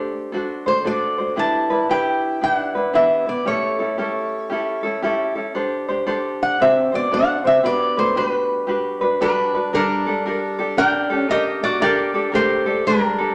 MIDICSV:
0, 0, Header, 1, 4, 480
1, 0, Start_track
1, 0, Key_signature, 1, "major"
1, 0, Tempo, 521739
1, 1264, Time_signature, 4, 2, 24, 8
1, 8953, Key_signature, -2, "minor"
1, 12279, End_track
2, 0, Start_track
2, 0, Title_t, "Resonator guitar played with a steel bar"
2, 0, Program_c, 0, 25
2, 0, Note_on_c, 0, 74, 71
2, 102, Note_off_c, 0, 74, 0
2, 624, Note_on_c, 0, 72, 74
2, 796, Note_off_c, 0, 72, 0
2, 801, Note_on_c, 0, 74, 74
2, 1281, Note_on_c, 0, 81, 90
2, 1287, Note_off_c, 0, 74, 0
2, 1750, Note_off_c, 0, 81, 0
2, 1754, Note_on_c, 0, 79, 84
2, 2238, Note_off_c, 0, 79, 0
2, 2241, Note_on_c, 0, 79, 82
2, 2342, Note_off_c, 0, 79, 0
2, 2342, Note_on_c, 0, 78, 82
2, 2713, Note_off_c, 0, 78, 0
2, 2716, Note_on_c, 0, 76, 76
2, 3026, Note_off_c, 0, 76, 0
2, 3027, Note_on_c, 0, 74, 74
2, 3194, Note_off_c, 0, 74, 0
2, 3197, Note_on_c, 0, 73, 77
2, 4598, Note_off_c, 0, 73, 0
2, 5913, Note_on_c, 0, 78, 78
2, 6085, Note_off_c, 0, 78, 0
2, 6088, Note_on_c, 0, 76, 86
2, 6393, Note_off_c, 0, 76, 0
2, 6397, Note_on_c, 0, 74, 89
2, 6567, Note_off_c, 0, 74, 0
2, 6567, Note_on_c, 0, 78, 85
2, 6869, Note_off_c, 0, 78, 0
2, 6873, Note_on_c, 0, 76, 80
2, 7045, Note_on_c, 0, 74, 95
2, 7046, Note_off_c, 0, 76, 0
2, 7323, Note_off_c, 0, 74, 0
2, 7348, Note_on_c, 0, 72, 82
2, 7507, Note_off_c, 0, 72, 0
2, 7518, Note_on_c, 0, 72, 71
2, 7619, Note_off_c, 0, 72, 0
2, 7619, Note_on_c, 0, 71, 71
2, 8468, Note_off_c, 0, 71, 0
2, 8479, Note_on_c, 0, 71, 81
2, 8488, Note_on_c, 0, 62, 59
2, 8927, Note_off_c, 0, 62, 0
2, 8964, Note_off_c, 0, 71, 0
2, 8967, Note_on_c, 0, 70, 95
2, 8975, Note_on_c, 0, 62, 69
2, 9885, Note_off_c, 0, 62, 0
2, 9915, Note_off_c, 0, 70, 0
2, 9919, Note_on_c, 0, 79, 106
2, 9927, Note_on_c, 0, 70, 86
2, 10278, Note_off_c, 0, 79, 0
2, 10278, Note_on_c, 0, 78, 106
2, 10364, Note_off_c, 0, 70, 0
2, 10402, Note_on_c, 0, 75, 91
2, 10407, Note_off_c, 0, 78, 0
2, 10412, Note_on_c, 0, 67, 66
2, 10684, Note_off_c, 0, 67, 0
2, 10701, Note_off_c, 0, 75, 0
2, 10705, Note_on_c, 0, 74, 82
2, 10715, Note_on_c, 0, 66, 72
2, 10862, Note_off_c, 0, 74, 0
2, 10867, Note_off_c, 0, 66, 0
2, 10873, Note_on_c, 0, 74, 104
2, 10886, Note_on_c, 0, 67, 69
2, 11322, Note_off_c, 0, 67, 0
2, 11358, Note_off_c, 0, 74, 0
2, 11361, Note_on_c, 0, 72, 88
2, 11366, Note_on_c, 0, 67, 67
2, 11801, Note_off_c, 0, 67, 0
2, 11836, Note_off_c, 0, 72, 0
2, 11839, Note_on_c, 0, 70, 90
2, 11848, Note_on_c, 0, 62, 71
2, 12279, Note_off_c, 0, 62, 0
2, 12279, Note_off_c, 0, 70, 0
2, 12279, End_track
3, 0, Start_track
3, 0, Title_t, "Ukulele"
3, 0, Program_c, 1, 24
3, 0, Note_on_c, 1, 62, 68
3, 0, Note_on_c, 1, 67, 63
3, 0, Note_on_c, 1, 69, 62
3, 0, Note_on_c, 1, 72, 69
3, 286, Note_off_c, 1, 69, 0
3, 297, Note_on_c, 1, 69, 52
3, 304, Note_off_c, 1, 62, 0
3, 305, Note_off_c, 1, 67, 0
3, 306, Note_off_c, 1, 72, 0
3, 308, Note_on_c, 1, 62, 55
3, 313, Note_on_c, 1, 66, 60
3, 317, Note_on_c, 1, 72, 61
3, 597, Note_off_c, 1, 72, 0
3, 605, Note_off_c, 1, 69, 0
3, 608, Note_off_c, 1, 66, 0
3, 608, Note_on_c, 1, 72, 48
3, 611, Note_off_c, 1, 62, 0
3, 619, Note_on_c, 1, 66, 41
3, 628, Note_on_c, 1, 62, 39
3, 772, Note_off_c, 1, 62, 0
3, 773, Note_off_c, 1, 66, 0
3, 776, Note_on_c, 1, 69, 58
3, 781, Note_off_c, 1, 72, 0
3, 783, Note_on_c, 1, 62, 62
3, 784, Note_on_c, 1, 66, 64
3, 792, Note_on_c, 1, 72, 62
3, 1074, Note_off_c, 1, 72, 0
3, 1083, Note_off_c, 1, 66, 0
3, 1085, Note_off_c, 1, 69, 0
3, 1085, Note_on_c, 1, 72, 37
3, 1089, Note_off_c, 1, 62, 0
3, 1094, Note_on_c, 1, 66, 35
3, 1103, Note_on_c, 1, 62, 28
3, 1247, Note_off_c, 1, 62, 0
3, 1251, Note_on_c, 1, 67, 56
3, 1257, Note_off_c, 1, 66, 0
3, 1258, Note_on_c, 1, 62, 61
3, 1260, Note_on_c, 1, 64, 55
3, 1262, Note_off_c, 1, 72, 0
3, 1266, Note_on_c, 1, 71, 69
3, 1553, Note_off_c, 1, 71, 0
3, 1562, Note_off_c, 1, 64, 0
3, 1563, Note_off_c, 1, 67, 0
3, 1564, Note_on_c, 1, 71, 50
3, 1566, Note_off_c, 1, 62, 0
3, 1573, Note_on_c, 1, 64, 41
3, 1582, Note_on_c, 1, 62, 41
3, 1738, Note_off_c, 1, 62, 0
3, 1742, Note_off_c, 1, 64, 0
3, 1742, Note_off_c, 1, 71, 0
3, 1742, Note_on_c, 1, 67, 66
3, 1749, Note_on_c, 1, 62, 58
3, 1754, Note_on_c, 1, 64, 58
3, 1755, Note_on_c, 1, 71, 60
3, 2214, Note_off_c, 1, 62, 0
3, 2216, Note_off_c, 1, 67, 0
3, 2220, Note_on_c, 1, 67, 51
3, 2224, Note_off_c, 1, 71, 0
3, 2225, Note_on_c, 1, 62, 50
3, 2230, Note_off_c, 1, 64, 0
3, 2234, Note_on_c, 1, 64, 55
3, 2235, Note_on_c, 1, 71, 57
3, 2517, Note_off_c, 1, 71, 0
3, 2527, Note_off_c, 1, 64, 0
3, 2528, Note_off_c, 1, 67, 0
3, 2528, Note_on_c, 1, 71, 43
3, 2531, Note_off_c, 1, 62, 0
3, 2538, Note_on_c, 1, 64, 40
3, 2545, Note_on_c, 1, 62, 44
3, 2690, Note_off_c, 1, 62, 0
3, 2697, Note_off_c, 1, 64, 0
3, 2698, Note_on_c, 1, 67, 63
3, 2701, Note_off_c, 1, 71, 0
3, 2701, Note_on_c, 1, 62, 66
3, 2708, Note_on_c, 1, 64, 71
3, 2712, Note_on_c, 1, 71, 74
3, 2991, Note_off_c, 1, 71, 0
3, 3001, Note_off_c, 1, 64, 0
3, 3002, Note_on_c, 1, 71, 38
3, 3005, Note_off_c, 1, 62, 0
3, 3008, Note_off_c, 1, 67, 0
3, 3012, Note_on_c, 1, 64, 37
3, 3016, Note_on_c, 1, 62, 28
3, 3172, Note_off_c, 1, 64, 0
3, 3177, Note_on_c, 1, 67, 60
3, 3178, Note_off_c, 1, 62, 0
3, 3181, Note_on_c, 1, 61, 62
3, 3182, Note_off_c, 1, 71, 0
3, 3183, Note_on_c, 1, 64, 66
3, 3190, Note_on_c, 1, 69, 65
3, 3475, Note_off_c, 1, 69, 0
3, 3484, Note_off_c, 1, 64, 0
3, 3486, Note_on_c, 1, 69, 47
3, 3487, Note_off_c, 1, 67, 0
3, 3490, Note_off_c, 1, 61, 0
3, 3495, Note_on_c, 1, 64, 47
3, 3506, Note_on_c, 1, 61, 41
3, 3655, Note_off_c, 1, 61, 0
3, 3659, Note_off_c, 1, 64, 0
3, 3660, Note_on_c, 1, 67, 60
3, 3665, Note_off_c, 1, 69, 0
3, 3666, Note_on_c, 1, 61, 62
3, 3670, Note_on_c, 1, 64, 70
3, 3675, Note_on_c, 1, 69, 71
3, 4133, Note_off_c, 1, 67, 0
3, 4135, Note_off_c, 1, 61, 0
3, 4137, Note_on_c, 1, 67, 60
3, 4143, Note_off_c, 1, 64, 0
3, 4146, Note_on_c, 1, 61, 59
3, 4154, Note_on_c, 1, 64, 57
3, 4157, Note_off_c, 1, 69, 0
3, 4161, Note_on_c, 1, 69, 59
3, 4432, Note_off_c, 1, 69, 0
3, 4443, Note_on_c, 1, 69, 58
3, 4444, Note_off_c, 1, 64, 0
3, 4448, Note_off_c, 1, 67, 0
3, 4453, Note_off_c, 1, 61, 0
3, 4455, Note_on_c, 1, 64, 50
3, 4464, Note_on_c, 1, 61, 45
3, 4618, Note_off_c, 1, 61, 0
3, 4623, Note_off_c, 1, 64, 0
3, 4623, Note_on_c, 1, 67, 66
3, 4624, Note_off_c, 1, 69, 0
3, 4629, Note_on_c, 1, 61, 72
3, 4634, Note_on_c, 1, 64, 86
3, 4638, Note_on_c, 1, 69, 86
3, 4914, Note_off_c, 1, 69, 0
3, 4925, Note_on_c, 1, 69, 37
3, 4926, Note_off_c, 1, 64, 0
3, 4932, Note_off_c, 1, 67, 0
3, 4935, Note_off_c, 1, 61, 0
3, 4937, Note_on_c, 1, 64, 41
3, 4947, Note_on_c, 1, 61, 38
3, 5093, Note_off_c, 1, 69, 0
3, 5101, Note_off_c, 1, 61, 0
3, 5104, Note_on_c, 1, 69, 70
3, 5105, Note_on_c, 1, 62, 67
3, 5107, Note_off_c, 1, 64, 0
3, 5111, Note_on_c, 1, 67, 63
3, 5114, Note_on_c, 1, 72, 71
3, 5403, Note_off_c, 1, 72, 0
3, 5412, Note_off_c, 1, 67, 0
3, 5413, Note_off_c, 1, 62, 0
3, 5413, Note_off_c, 1, 69, 0
3, 5414, Note_on_c, 1, 72, 62
3, 5423, Note_on_c, 1, 67, 51
3, 5431, Note_on_c, 1, 62, 40
3, 5574, Note_off_c, 1, 62, 0
3, 5578, Note_off_c, 1, 67, 0
3, 5580, Note_on_c, 1, 69, 67
3, 5581, Note_off_c, 1, 72, 0
3, 5585, Note_on_c, 1, 62, 76
3, 5589, Note_on_c, 1, 67, 80
3, 5592, Note_on_c, 1, 72, 78
3, 6059, Note_off_c, 1, 69, 0
3, 6070, Note_on_c, 1, 69, 50
3, 6071, Note_off_c, 1, 67, 0
3, 6072, Note_off_c, 1, 72, 0
3, 6073, Note_off_c, 1, 62, 0
3, 6077, Note_on_c, 1, 62, 52
3, 6079, Note_on_c, 1, 66, 54
3, 6087, Note_on_c, 1, 72, 58
3, 6356, Note_off_c, 1, 72, 0
3, 6366, Note_off_c, 1, 66, 0
3, 6367, Note_on_c, 1, 72, 49
3, 6371, Note_off_c, 1, 62, 0
3, 6376, Note_off_c, 1, 69, 0
3, 6378, Note_on_c, 1, 66, 44
3, 6382, Note_on_c, 1, 62, 41
3, 6543, Note_off_c, 1, 62, 0
3, 6544, Note_off_c, 1, 66, 0
3, 6545, Note_on_c, 1, 69, 66
3, 6547, Note_off_c, 1, 72, 0
3, 6554, Note_on_c, 1, 62, 75
3, 6555, Note_on_c, 1, 66, 63
3, 6559, Note_on_c, 1, 72, 71
3, 6836, Note_off_c, 1, 72, 0
3, 6844, Note_off_c, 1, 66, 0
3, 6847, Note_on_c, 1, 72, 39
3, 6854, Note_off_c, 1, 69, 0
3, 6855, Note_on_c, 1, 66, 33
3, 6856, Note_off_c, 1, 62, 0
3, 6867, Note_on_c, 1, 62, 34
3, 7014, Note_off_c, 1, 62, 0
3, 7020, Note_off_c, 1, 66, 0
3, 7021, Note_on_c, 1, 67, 60
3, 7025, Note_on_c, 1, 62, 58
3, 7028, Note_off_c, 1, 72, 0
3, 7031, Note_on_c, 1, 66, 73
3, 7034, Note_on_c, 1, 71, 70
3, 7322, Note_off_c, 1, 71, 0
3, 7331, Note_off_c, 1, 66, 0
3, 7332, Note_off_c, 1, 67, 0
3, 7333, Note_on_c, 1, 71, 48
3, 7334, Note_off_c, 1, 62, 0
3, 7342, Note_on_c, 1, 66, 42
3, 7352, Note_on_c, 1, 62, 47
3, 7496, Note_off_c, 1, 62, 0
3, 7502, Note_off_c, 1, 66, 0
3, 7505, Note_on_c, 1, 67, 65
3, 7506, Note_off_c, 1, 71, 0
3, 7507, Note_on_c, 1, 62, 73
3, 7513, Note_on_c, 1, 66, 69
3, 7517, Note_on_c, 1, 71, 67
3, 7971, Note_off_c, 1, 67, 0
3, 7975, Note_on_c, 1, 67, 55
3, 7977, Note_off_c, 1, 66, 0
3, 7981, Note_off_c, 1, 62, 0
3, 7983, Note_off_c, 1, 71, 0
3, 7985, Note_on_c, 1, 62, 59
3, 7988, Note_on_c, 1, 66, 54
3, 7994, Note_on_c, 1, 71, 61
3, 8277, Note_off_c, 1, 71, 0
3, 8286, Note_off_c, 1, 66, 0
3, 8288, Note_on_c, 1, 71, 62
3, 8289, Note_off_c, 1, 67, 0
3, 8294, Note_off_c, 1, 62, 0
3, 8297, Note_on_c, 1, 66, 44
3, 8308, Note_on_c, 1, 62, 50
3, 8463, Note_off_c, 1, 62, 0
3, 8468, Note_off_c, 1, 66, 0
3, 8468, Note_off_c, 1, 71, 0
3, 8471, Note_on_c, 1, 67, 78
3, 8474, Note_on_c, 1, 62, 64
3, 8479, Note_on_c, 1, 66, 82
3, 8480, Note_on_c, 1, 71, 82
3, 8769, Note_off_c, 1, 71, 0
3, 8777, Note_off_c, 1, 67, 0
3, 8778, Note_off_c, 1, 62, 0
3, 8780, Note_off_c, 1, 66, 0
3, 8780, Note_on_c, 1, 71, 44
3, 8790, Note_on_c, 1, 66, 39
3, 8795, Note_on_c, 1, 62, 35
3, 8948, Note_off_c, 1, 62, 0
3, 8951, Note_on_c, 1, 70, 65
3, 8953, Note_off_c, 1, 71, 0
3, 8958, Note_off_c, 1, 66, 0
3, 8959, Note_on_c, 1, 62, 69
3, 8962, Note_on_c, 1, 67, 64
3, 8963, Note_on_c, 1, 69, 68
3, 9249, Note_off_c, 1, 69, 0
3, 9256, Note_off_c, 1, 70, 0
3, 9258, Note_off_c, 1, 67, 0
3, 9260, Note_off_c, 1, 62, 0
3, 9260, Note_on_c, 1, 69, 56
3, 9269, Note_on_c, 1, 67, 45
3, 9278, Note_on_c, 1, 62, 42
3, 9432, Note_off_c, 1, 62, 0
3, 9433, Note_off_c, 1, 67, 0
3, 9433, Note_off_c, 1, 69, 0
3, 9437, Note_on_c, 1, 70, 59
3, 9444, Note_on_c, 1, 62, 65
3, 9450, Note_on_c, 1, 67, 59
3, 9455, Note_on_c, 1, 69, 58
3, 9728, Note_off_c, 1, 69, 0
3, 9736, Note_off_c, 1, 67, 0
3, 9738, Note_off_c, 1, 70, 0
3, 9739, Note_on_c, 1, 69, 59
3, 9742, Note_off_c, 1, 62, 0
3, 9747, Note_on_c, 1, 67, 58
3, 9754, Note_on_c, 1, 62, 48
3, 10207, Note_off_c, 1, 69, 0
3, 10209, Note_off_c, 1, 67, 0
3, 10211, Note_on_c, 1, 69, 51
3, 10220, Note_on_c, 1, 67, 54
3, 10228, Note_off_c, 1, 62, 0
3, 10232, Note_on_c, 1, 62, 44
3, 10382, Note_off_c, 1, 67, 0
3, 10386, Note_off_c, 1, 62, 0
3, 10386, Note_on_c, 1, 70, 52
3, 10387, Note_off_c, 1, 69, 0
3, 10397, Note_on_c, 1, 62, 56
3, 10400, Note_on_c, 1, 67, 56
3, 10406, Note_on_c, 1, 69, 61
3, 10857, Note_off_c, 1, 70, 0
3, 10864, Note_off_c, 1, 67, 0
3, 10867, Note_off_c, 1, 62, 0
3, 10868, Note_on_c, 1, 70, 72
3, 10870, Note_on_c, 1, 62, 70
3, 10875, Note_on_c, 1, 67, 62
3, 10876, Note_off_c, 1, 69, 0
3, 10879, Note_on_c, 1, 69, 73
3, 11157, Note_off_c, 1, 69, 0
3, 11164, Note_off_c, 1, 67, 0
3, 11168, Note_on_c, 1, 69, 58
3, 11170, Note_off_c, 1, 62, 0
3, 11171, Note_off_c, 1, 70, 0
3, 11175, Note_on_c, 1, 67, 57
3, 11181, Note_on_c, 1, 62, 49
3, 11329, Note_off_c, 1, 67, 0
3, 11333, Note_on_c, 1, 70, 54
3, 11334, Note_off_c, 1, 62, 0
3, 11344, Note_off_c, 1, 69, 0
3, 11346, Note_on_c, 1, 62, 59
3, 11347, Note_on_c, 1, 67, 62
3, 11355, Note_on_c, 1, 69, 55
3, 11635, Note_off_c, 1, 69, 0
3, 11643, Note_off_c, 1, 70, 0
3, 11644, Note_off_c, 1, 67, 0
3, 11646, Note_on_c, 1, 69, 54
3, 11649, Note_off_c, 1, 62, 0
3, 11655, Note_on_c, 1, 67, 49
3, 11664, Note_on_c, 1, 62, 47
3, 12125, Note_off_c, 1, 69, 0
3, 12129, Note_on_c, 1, 69, 56
3, 12130, Note_off_c, 1, 67, 0
3, 12141, Note_on_c, 1, 67, 51
3, 12144, Note_off_c, 1, 62, 0
3, 12148, Note_on_c, 1, 62, 43
3, 12279, Note_off_c, 1, 62, 0
3, 12279, Note_off_c, 1, 67, 0
3, 12279, Note_off_c, 1, 69, 0
3, 12279, End_track
4, 0, Start_track
4, 0, Title_t, "Steel-string acoustic guitar"
4, 0, Program_c, 2, 25
4, 0, Note_on_c, 2, 57, 63
4, 93, Note_off_c, 2, 57, 0
4, 610, Note_on_c, 2, 57, 61
4, 772, Note_off_c, 2, 57, 0
4, 783, Note_on_c, 2, 57, 57
4, 1230, Note_off_c, 2, 57, 0
4, 1264, Note_on_c, 2, 64, 74
4, 1711, Note_off_c, 2, 64, 0
4, 1753, Note_on_c, 2, 64, 65
4, 2196, Note_off_c, 2, 64, 0
4, 2236, Note_on_c, 2, 62, 72
4, 2679, Note_off_c, 2, 62, 0
4, 2704, Note_on_c, 2, 59, 52
4, 2989, Note_off_c, 2, 59, 0
4, 3022, Note_on_c, 2, 59, 64
4, 3181, Note_off_c, 2, 59, 0
4, 3191, Note_on_c, 2, 57, 63
4, 4595, Note_off_c, 2, 57, 0
4, 5907, Note_on_c, 2, 62, 67
4, 6066, Note_off_c, 2, 62, 0
4, 6083, Note_on_c, 2, 60, 83
4, 6362, Note_off_c, 2, 60, 0
4, 6386, Note_on_c, 2, 59, 74
4, 6545, Note_off_c, 2, 59, 0
4, 6554, Note_on_c, 2, 62, 68
4, 6837, Note_off_c, 2, 62, 0
4, 6855, Note_on_c, 2, 60, 73
4, 7019, Note_off_c, 2, 60, 0
4, 7026, Note_on_c, 2, 59, 76
4, 7313, Note_off_c, 2, 59, 0
4, 7338, Note_on_c, 2, 57, 62
4, 7501, Note_off_c, 2, 57, 0
4, 7520, Note_on_c, 2, 56, 52
4, 7621, Note_off_c, 2, 56, 0
4, 7621, Note_on_c, 2, 55, 52
4, 8462, Note_off_c, 2, 55, 0
4, 8473, Note_on_c, 2, 55, 60
4, 8919, Note_off_c, 2, 55, 0
4, 8957, Note_on_c, 2, 55, 77
4, 9876, Note_off_c, 2, 55, 0
4, 9912, Note_on_c, 2, 62, 89
4, 10234, Note_off_c, 2, 62, 0
4, 10234, Note_on_c, 2, 61, 89
4, 10356, Note_off_c, 2, 61, 0
4, 10391, Note_on_c, 2, 58, 66
4, 10673, Note_off_c, 2, 58, 0
4, 10700, Note_on_c, 2, 58, 81
4, 10859, Note_off_c, 2, 58, 0
4, 10877, Note_on_c, 2, 58, 81
4, 11317, Note_off_c, 2, 58, 0
4, 11351, Note_on_c, 2, 57, 71
4, 11793, Note_off_c, 2, 57, 0
4, 11837, Note_on_c, 2, 55, 80
4, 12275, Note_off_c, 2, 55, 0
4, 12279, End_track
0, 0, End_of_file